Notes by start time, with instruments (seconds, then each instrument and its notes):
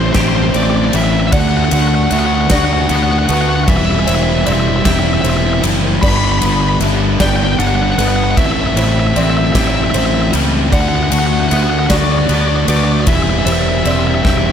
Already playing: fingered electric bass A1, clean electric guitar A2 G3, distorted electric guitar E3 A3 C4 E4, felt piano D5
0.06 lead electric guitar C5
0.13 fingered electric bass A1, distorted electric guitar E4, clean electric guitar G4, lead electric guitar C5, kick, snare, ride
0.17 distorted electric guitar A3 C4, lead electric guitar C5
0.29 lead electric guitar C5
0.36 lead electric guitar C5
0.44 lead electric guitar C5
0.54 fingered electric bass A1, distorted electric guitar E3 A3 C4 E4, felt piano C5, lead electric guitar D5, ride
0.63 lead electric guitar D5
0.70 lead electric guitar D5
0.77 lead electric guitar D5
0.85 lead electric guitar D5
0.93 fingered electric bass A1, clean electric guitar G3, distorted electric guitar A3 C4 E4, lead electric guitar E5, ride
1.04 lead electric guitar E5
1.12 lead electric guitar E5
1.20 lead electric guitar E5
1.28 lead electric guitar E5
1.32 fingered electric bass D2, distorted electric guitar D3 A3 D4 F#4, felt piano D5, lead electric guitar F#5, kick, ride
1.40 lead electric guitar F#5
1.48 lead electric guitar F#5
1.57 lead electric guitar F#5
1.65 lead electric guitar F#5
1.71 fingered electric bass D2, distorted electric guitar A3 D4 F#4, lead electric guitar F#5, ride
1.79 lead electric guitar F#5
1.88 lead electric guitar F#5
1.95 lead electric guitar F#5
2.03 lead electric guitar F#5
2.11 fingered electric bass D2, distorted electric guitar D3 A3 D4 F#4, clean electric guitar B3, felt piano E5, lead electric guitar F#5, ride
2.19 lead electric guitar F#5
2.26 lead electric guitar F#5
2.35 lead electric guitar F#5
2.41 lead electric guitar F#5
2.50 fingered electric bass D2, distorted electric guitar A3 D4 F#4, felt piano D5, lead electric guitar F#5, kick, snare, ride
2.59 lead electric guitar F#5
2.65 lead electric guitar F#5
2.73 lead electric guitar F#5
2.81 lead electric guitar F#5
2.89 fingered electric bass D2, distorted electric guitar D3 A3 D4 F#4, clean electric guitar B3, lead electric guitar F#5, ride
2.96 lead electric guitar F#5
3.03 lead electric guitar F#5
3.12 lead electric guitar F#5
3.19 lead electric guitar F#5
3.26 fingered electric bass D2, distorted electric guitar F#4, felt piano B4, lead electric guitar F#5, ride
3.30 distorted electric guitar A3 D4, lead electric guitar F#5
3.41 lead electric guitar F#5
3.49 lead electric guitar F#5
3.56 lead electric guitar F#5
3.64 fingered electric bass E1, distorted electric guitar E3, lead electric guitar F#5, kick, ride
3.68 distorted electric guitar G3 C4 E4, lead electric guitar E5
3.77 lead electric guitar E5
3.85 lead electric guitar E5
3.91 lead electric guitar E5
3.99 lead electric guitar E5
4.06 fingered electric bass E1, distorted electric guitar G3 C4 E4, felt piano C5, lead electric guitar E5, ride
4.15 lead electric guitar E5
4.23 lead electric guitar E5
4.30 lead electric guitar E5
4.38 lead electric guitar E5
4.45 fingered electric bass E1, distorted electric guitar E3 G3 C4 E4, felt piano D5, lead electric guitar E5, ride
4.53 lead electric guitar E5
4.60 lead electric guitar E5
4.68 lead electric guitar E5
4.76 lead electric guitar E5
4.84 fingered electric bass E1, distorted electric guitar G3 C4 E4, clean electric guitar G4, lead electric guitar E5, kick, snare, ride
4.91 lead electric guitar E5
4.99 lead electric guitar E5
5.07 lead electric guitar E5
5.14 lead electric guitar E5
5.21 fingered electric bass E1, distorted electric guitar E3 G3 C4, felt piano C5, lead electric guitar E5, ride
5.26 distorted electric guitar E4, lead electric guitar E5
5.37 lead electric guitar E5
5.45 lead electric guitar E5
5.54 lead electric guitar E5
5.62 fingered electric bass F#1, distorted electric guitar G3 C4 E4, ride
6.01 fingered electric bass G1, distorted electric guitar G2 D3 G3 B3 D4, felt piano D5, lead electric guitar B5, kick, crash
6.09 lead electric guitar B5
6.17 lead electric guitar B5
6.24 lead electric guitar B5
6.32 lead electric guitar B5
6.39 fingered electric bass G1, distorted electric guitar D4, lead electric guitar B5, ride
6.43 distorted electric guitar G3 B3, lead electric guitar B5
6.53 lead electric guitar B5
6.61 lead electric guitar B5
6.69 lead electric guitar B5
6.80 fingered electric bass G1, distorted electric guitar D3 G3 B3 D4, felt piano E5, ride
7.19 fingered electric bass G1, distorted electric guitar G3 B3 D4, clean electric guitar G4, felt piano D5, lead electric guitar G5, kick, snare, ride
7.29 lead electric guitar G5
7.37 lead electric guitar G5
7.44 lead electric guitar G5
7.53 lead electric guitar G5
7.59 fingered electric bass G1, distorted electric guitar D3 G3 B3 D4, lead electric guitar F#5, ride
7.67 lead electric guitar F#5
7.76 lead electric guitar F#5
7.83 lead electric guitar F#5
7.91 lead electric guitar F#5
7.98 fingered electric bass G1, distorted electric guitar G3 B3 D4, felt piano B4, lead electric guitar F#5, ride
8.08 lead electric guitar F#5
8.16 lead electric guitar F#5
8.24 lead electric guitar F#5
8.31 lead electric guitar F#5
8.37 fingered electric bass A1, distorted electric guitar A2 E3 A3 C4 E4, lead electric guitar E5, kick, ride
8.46 lead electric guitar E5
8.52 lead electric guitar E5
8.61 lead electric guitar E5
8.67 lead electric guitar E5
8.76 fingered electric bass A1, clean electric guitar G3, distorted electric guitar A3 C4 E4, felt piano C5, lead electric guitar E5, ride
8.84 lead electric guitar E5
8.92 lead electric guitar E5
9.00 lead electric guitar E5
9.07 lead electric guitar E5
9.14 fingered electric bass A1, distorted electric guitar E3 A3, felt piano D5, lead electric guitar E5, ride
9.18 distorted electric guitar C4 E4, lead electric guitar E5
9.30 lead electric guitar E5
9.37 lead electric guitar E5
9.45 lead electric guitar E5
9.53 fingered electric bass A1, distorted electric guitar C4 E4, clean electric guitar G4, lead electric guitar E5, kick, snare, ride
9.58 distorted electric guitar A3, lead electric guitar E5
9.68 lead electric guitar E5
9.76 lead electric guitar E5
9.84 lead electric guitar E5
9.91 fingered electric bass A1, distorted electric guitar E3, felt piano C5, lead electric guitar E5, ride
9.95 distorted electric guitar A3 C4 E4, lead electric guitar E5
10.06 lead electric guitar E5
10.15 lead electric guitar E5
10.22 lead electric guitar E5
10.33 fingered electric bass C#2, clean electric guitar G3, distorted electric guitar A3 C4 E4, ride
10.72 fingered electric bass D2, distorted electric guitar D3 A3 D4 F#4, felt piano D5, lead electric guitar F#5, kick, ride
10.81 lead electric guitar F#5
10.88 lead electric guitar F#5
10.96 lead electric guitar F#5
11.03 lead electric guitar F#5
11.11 fingered electric bass D2, distorted electric guitar A3 D4 F#4, lead electric guitar F#5, ride
11.19 lead electric guitar F#5
11.27 lead electric guitar F#5
11.33 lead electric guitar F#5
11.40 lead electric guitar F#5
11.48 fingered electric bass D2, distorted electric guitar D3 A3, clean electric guitar B3, felt piano E5, lead electric guitar F#5, ride
11.53 distorted electric guitar D4 F#4, lead electric guitar F#5
11.63 lead electric guitar F#5
11.70 lead electric guitar F#5
11.79 lead electric guitar F#5
11.87 fingered electric bass D2, distorted electric guitar F#4, lead electric guitar D5 F#5, felt piano D5, kick, snare, ride
11.92 distorted electric guitar A3 D4
11.97 lead electric guitar D5
12.04 lead electric guitar D5
12.12 lead electric guitar D5
12.19 lead electric guitar D5
12.27 fingered electric bass D2, distorted electric guitar D3 A3 D4, clean electric guitar B3, lead electric guitar D5, ride
12.31 distorted electric guitar F#4, lead electric guitar D5
12.41 lead electric guitar D5
12.48 lead electric guitar D5
12.56 lead electric guitar D5
12.68 fingered electric bass D2, distorted electric guitar A3 D4 F#4, felt piano B4, lead electric guitar D5, ride
12.77 lead electric guitar D5
12.85 lead electric guitar D5
12.93 lead electric guitar D5
13.01 lead electric guitar D5
13.07 fingered electric bass E1, distorted electric guitar E3 G3 C4 E4 G4, lead electric guitar E5, kick, ride
13.15 lead electric guitar E5
13.23 lead electric guitar E5
13.30 lead electric guitar E5
13.39 lead electric guitar E5
13.45 fingered electric bass E1, distorted electric guitar C4 E4 G4, felt piano C5, lead electric guitar E5, ride
13.50 distorted electric guitar G3, lead electric guitar E5
13.61 lead electric guitar E5
13.69 lead electric guitar E5
13.77 lead electric guitar E5
13.84 fingered electric bass E1, distorted electric guitar E3 G3 C4 E4, felt piano D5, lead electric guitar E5, ride
13.89 distorted electric guitar G4, lead electric guitar E5
13.99 lead electric guitar E5
14.07 lead electric guitar E5
14.15 lead electric guitar E5
14.22 fingered electric bass E1, distorted electric guitar E4 G4, lead electric guitar E5, kick, snare
14.27 distorted electric guitar G3 C4, lead electric guitar E5
14.38 lead electric guitar E5
14.46 lead electric guitar E5